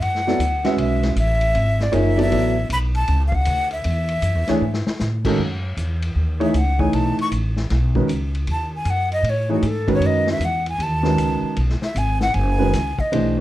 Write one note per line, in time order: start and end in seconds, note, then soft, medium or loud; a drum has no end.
0.00 0.38 F#2 medium
0.00 0.78 F#5 medium
0.00 ride medium
0.15 snare soft
0.27 0.39 F#3 medium
0.27 0.39 B3 medium
0.27 0.39 E4 medium
0.27 0.39 A4 medium
0.27 0.39 D5 medium
0.27 snare soft
0.39 0.76 D2 medium
0.39 hi-hat pedal medium
0.39 ride medium
0.64 1.14 G#3 medium
0.64 1.14 C#4 medium
0.64 1.14 F#4 medium
0.64 1.14 B4 medium
0.64 1.14 E5 medium
0.64 snare medium
0.64 ride soft
0.77 1.14 B1 medium
0.77 1.15 E5 medium
0.77 ride medium
1.03 snare soft
1.03 ride medium
1.16 1.53 A1 medium
1.16 1.84 E5 medium
1.16 hi-hat pedal medium
1.16 ride medium
1.41 ride medium
1.55 1.92 G#1 medium
1.55 ride medium
1.80 1.96 D5 medium
1.80 snare soft
1.92 2.30 F#1 medium
1.92 2.15 F3 medium
1.92 2.15 A#3 medium
1.92 2.15 D#4 medium
1.92 2.15 G#4 medium
1.92 2.15 C#5 medium
1.92 2.19 E5 medium
1.92 hi-hat pedal medium
1.92 ride medium
2.17 2.30 F#3 medium
2.17 2.30 B3 medium
2.17 2.30 E4 medium
2.17 2.30 A4 medium
2.17 2.30 D5 medium
2.17 ride medium
2.22 2.68 E5 loud
2.31 2.69 A1 medium
2.31 2.54 F#3 medium
2.31 2.54 B3 medium
2.31 2.54 E4 medium
2.31 2.54 A4 medium
2.31 2.54 D5 medium
2.31 ride medium
2.69 3.07 B1 medium
2.69 2.78 B5 loud
2.69 hi-hat pedal soft
2.69 ride medium
2.95 3.22 A5 loud
2.95 ride soft
3.08 3.45 C#2 medium
3.08 ride medium
3.27 3.36 F5 medium
3.32 3.72 F#5 loud
3.32 kick medium
3.45 3.84 D2 loud
3.45 hi-hat pedal medium
3.45 ride medium
3.71 4.83 E5 medium
3.71 ride soft
3.84 4.21 E2 medium
3.84 ride medium
4.08 ride medium
4.22 4.35 F#2 medium
4.22 hi-hat pedal medium
4.22 ride medium
4.35 4.48 E2 medium
4.47 4.61 D2 medium
4.47 4.61 E3 medium
4.47 4.61 A3 medium
4.47 4.61 D4 medium
4.47 4.61 G#4 medium
4.47 4.61 C#5 medium
4.47 snare soft
4.47 ride soft
4.61 4.85 G#2 medium
4.74 snare medium
4.87 muted upright bass stroke soft
4.87 snare medium
5.00 5.38 A2 medium
5.00 snare medium
5.00 hi-hat pedal medium
5.25 5.38 D#3 medium
5.25 5.38 G#3 medium
5.25 5.38 C#4 medium
5.25 5.38 F#4 medium
5.25 5.38 A4 medium
5.25 kick medium
5.25 crash medium
5.38 5.76 F#2 medium
5.77 6.15 E2 medium
5.77 hi-hat pedal medium
5.77 ride medium
6.02 ride medium
6.15 6.53 D#2 medium
6.40 6.53 E3 medium
6.40 6.53 A3 medium
6.40 6.53 D#4 medium
6.40 6.53 G#4 medium
6.40 6.53 C#5 medium
6.40 6.59 E5 medium
6.40 ride soft
6.54 6.92 C#2 medium
6.54 6.81 F#5 medium
6.54 hi-hat pedal medium
6.54 ride medium
6.79 7.29 E3 medium
6.79 7.29 A3 medium
6.79 7.29 D#4 medium
6.79 7.29 G#4 medium
6.79 7.29 C#5 medium
6.79 6.96 G#5 medium
6.79 kick medium
6.93 7.17 B1 medium
6.93 7.19 A5 medium
6.93 ride medium
7.19 7.28 C#6 medium
7.19 muted upright bass stroke soft
7.19 ride soft
7.31 7.69 A1 medium
7.31 hi-hat pedal medium
7.31 ride medium
7.57 snare soft
7.70 8.07 B1 medium
7.70 snare soft
7.70 ride medium
7.95 8.07 D#3 medium
7.95 8.08 G#3 medium
7.95 8.08 C#4 medium
7.95 8.08 F#4 medium
7.95 8.08 B4 medium
7.95 kick medium
8.08 8.46 C#2 medium
8.08 hi-hat pedal medium
8.08 ride medium
8.35 ride soft
8.47 8.84 D#2 medium
8.47 ride medium
8.52 8.73 A5 medium
8.75 8.92 G#5 medium
8.85 9.22 F#2 medium
8.85 hi-hat pedal medium
8.85 ride medium
8.90 9.12 F#5 medium
9.12 9.31 D#5 medium
9.12 ride soft
9.23 9.61 A2 medium
9.23 ride medium
9.30 9.53 C#5 medium
9.49 9.62 E3 medium
9.49 9.62 A3 medium
9.49 9.62 D#4 medium
9.49 9.62 G#4 medium
9.49 9.62 C#5 medium
9.53 9.68 F#4 soft
9.62 9.99 G#2 medium
9.62 hi-hat pedal medium
9.62 ride medium
9.67 9.91 A4 medium
9.87 10.38 D#3 medium
9.87 10.38 G#3 medium
9.87 10.38 C#4 medium
9.87 10.38 F#4 medium
9.87 10.38 B4 medium
9.87 kick medium
9.87 ride medium
9.93 10.08 C#5 medium
10.00 10.39 F#2 medium
10.00 ride medium
10.06 10.30 D#5 medium
10.27 snare medium
10.32 10.46 E5 medium
10.39 10.78 E2 medium
10.39 hi-hat pedal medium
10.39 ride medium
10.45 10.68 F#5 medium
10.66 10.84 G#5 medium
10.66 ride medium
10.78 11.16 D#2 medium
10.78 ride medium
10.83 11.59 A5 medium
11.03 11.54 D#3 medium
11.03 11.54 G#3 medium
11.03 11.54 C#4 medium
11.03 11.54 F#4 medium
11.03 11.54 B4 medium
11.03 snare soft
11.17 11.41 C#2 medium
11.17 hi-hat pedal medium
11.17 ride medium
11.42 muted upright bass stroke soft
11.56 11.81 B1 medium
11.56 ride medium
11.69 snare soft
11.81 11.99 E5 medium
11.81 muted upright bass stroke soft
11.81 snare soft
11.95 12.33 G#1 medium
11.95 12.21 G#5 medium
11.95 hi-hat pedal medium
11.95 ride medium
12.21 12.35 F#5 medium
12.21 snare medium
12.34 12.72 F#1 medium
12.34 13.01 G#5 medium
12.34 ride medium
12.59 12.71 D#3 medium
12.59 12.72 G#3 medium
12.59 12.72 C#4 medium
12.59 12.72 F#4 medium
12.59 12.72 B4 medium
12.73 12.97 C#2 medium
12.73 snare soft
12.73 hi-hat pedal medium
12.73 ride medium
12.98 13.38 D#5 medium
12.98 muted upright bass stroke soft
12.98 kick medium
13.12 13.40 B1 medium
13.12 13.35 E3 medium
13.12 13.35 A3 medium
13.12 13.35 D4 medium
13.12 13.35 G4 medium
13.12 13.35 C5 medium
13.12 ride medium